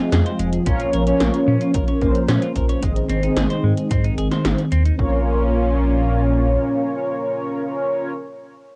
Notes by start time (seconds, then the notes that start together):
Already playing: F3 G#3 C4 F4 G#4 D#5
0.12 F2 G#4, snare, closed hi-hat
0.26 C5, closed hi-hat
0.39 F1 G#3, closed hi-hat
0.53 closed hi-hat
0.66 A#1 A#3 C#4 F4 A#4 C#5, kick, closed hi-hat
0.80 F4, closed hi-hat
0.93 A#1 A#4, closed hi-hat
1.07 C#4 F4 A#4 C#5, closed hi-hat
1.20 A#1 A#3, snare, closed hi-hat
1.34 closed hi-hat
1.48 A#2 C#4
1.61 F4, closed hi-hat
1.74 A#1 A#4, kick, closed hi-hat
1.88 C#5, closed hi-hat
2.01 A#1 A#3 C#4 F4 A#4 C5, kick, closed hi-hat
2.15 closed hi-hat
2.29 A#2 C#4, snare, closed hi-hat
2.42 F4, closed hi-hat
2.56 A#1 A#4, kick, closed hi-hat
2.69 C#5, closed hi-hat
2.83 G#1 D#3 G#3 C4 D#4 G#4 D#5, kick, closed hi-hat
2.96 closed hi-hat
3.10 G#1 C4, closed hi-hat
3.23 C4 D#4 G#4 D#5, closed hi-hat
3.37 G#1 G#4, snare, closed hi-hat
3.50 C5, closed hi-hat
3.64 G#2 G#3
3.77 closed hi-hat
3.91 G#2 C4, kick, closed hi-hat
4.04 D#4, closed hi-hat
4.18 G#1 G#4, closed hi-hat
4.31 C5, snare, closed hi-hat
4.45 G#1 G#3 C4 D#4 G#4 C5, snare, closed hi-hat
4.58 closed hi-hat
4.72 D#2 C4, closed hi-hat
4.85 D#4, closed hi-hat
4.99 A#1 A#2 A#3 C#4 F4 A#4 C#5, kick